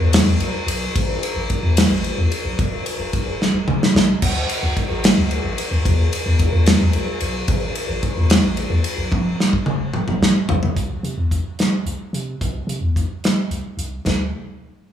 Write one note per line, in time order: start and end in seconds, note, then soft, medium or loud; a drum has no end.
0.00 0.21 E2 medium
0.13 snare loud
0.13 ride loud
0.26 0.37 E2 loud
0.39 0.51 B1 loud
0.39 ride medium
0.67 0.89 B1 loud
0.67 ride loud
0.95 1.17 A1 loud
0.95 kick loud
0.95 ride loud
1.23 ride medium
1.36 1.47 A1 medium
1.50 kick medium
1.50 ride medium
1.63 1.85 E2 medium
1.77 snare loud
1.77 ride loud
1.91 2.12 A1 loud
2.04 ride medium
2.18 2.29 E2 medium
2.32 ride medium
2.45 2.56 B1 medium
2.59 2.81 E1 loud
2.59 kick loud
2.59 ride medium
2.86 ride medium
3.00 3.21 E1 medium
3.13 kick medium
3.13 ride medium
3.27 3.49 E1 medium
3.42 snare medium
3.54 3.65 E1 medium
3.68 3.78 B1 loud
3.68 mid tom medium
3.83 snare medium
3.95 4.16 B1 loud
3.95 snare loud
4.22 4.44 D2 medium
4.22 kick loud
4.22 crash loud
4.22 splash medium
4.49 ride medium
4.63 4.74 D2 medium
4.77 kick medium
4.77 ride medium
4.91 5.12 A1 medium
5.04 snare loud
5.04 ride loud
5.18 5.39 D2 medium
5.31 ride medium
5.45 5.55 A1 medium
5.58 ride medium
5.71 5.82 D#2 medium
5.85 6.07 E2 loud
5.85 kick loud
5.85 ride loud
6.13 ride medium
6.26 6.48 E2 medium
6.39 kick medium
6.39 ride medium
6.53 6.75 E2 medium
6.66 snare loud
6.66 ride loud
6.81 6.92 E2 medium
6.93 7.05 B1 loud
6.93 ride medium
7.20 7.43 B1 loud
7.20 ride medium
7.48 7.70 A1 medium
7.48 kick loud
7.48 ride loud
7.75 ride medium
7.89 8.00 A1 medium
8.03 kick medium
8.03 ride medium
8.17 8.39 E2 medium
8.30 snare loud
8.30 ride loud
8.43 8.65 A1 medium
8.57 ride medium
8.70 8.82 E2 medium
8.84 ride medium
8.98 9.09 B1 medium
9.12 9.34 E1 loud
9.12 kick loud
9.12 high tom medium
9.40 snare medium
9.53 9.75 E1 medium
9.53 kick medium
9.66 mid tom medium
9.80 10.02 E1 loud
9.94 mid tom medium
10.08 10.19 E1 medium
10.08 mid tom medium
10.21 10.32 B1 medium
10.21 snare loud
10.49 10.71 B1 loud
10.49 floor tom loud
10.63 floor tom medium
10.76 10.99 C2 medium
10.76 kick medium
10.76 closed hi-hat medium
11.03 11.15 C3 medium
11.03 closed hi-hat soft
11.18 11.40 E2 medium
11.31 kick medium
11.31 closed hi-hat medium
11.59 snare medium
11.59 closed hi-hat medium
11.86 11.97 C2 medium
11.86 closed hi-hat soft
12.13 12.35 C3 medium
12.13 closed hi-hat medium
12.41 12.63 C2 loud
12.41 kick loud
12.41 closed hi-hat medium
12.67 12.79 C3 loud
12.67 closed hi-hat medium
12.81 13.04 E2 medium
12.96 kick medium
12.96 closed hi-hat medium
13.24 snare medium
13.24 closed hi-hat medium
13.51 13.62 C2 medium
13.51 closed hi-hat soft
13.77 14.00 C2 medium
13.77 closed hi-hat medium
14.06 14.32 D2 medium
14.06 kick medium
14.06 snare medium
14.06 ride bell medium